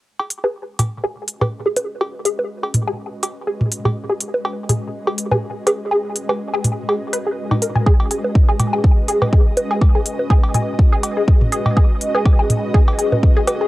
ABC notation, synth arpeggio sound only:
X:1
M:4/4
L:1/16
Q:"Swing 16ths" 1/4=123
K:G#m
V:1 name="Synth arpeggio sound"
z G z G z2 G z G z2 G z G z2 | G z G z2 G z G z2 G z G z2 G | z G z2 G z G z2 G z G z2 G z | G z2 G z G z2 G z B G z D A g |
G z G z2 G z G z2 G z G z2 G | z G z2 G z G z2 G z G z2 G z | G z2 G z G z2 G z G z2 G z G |]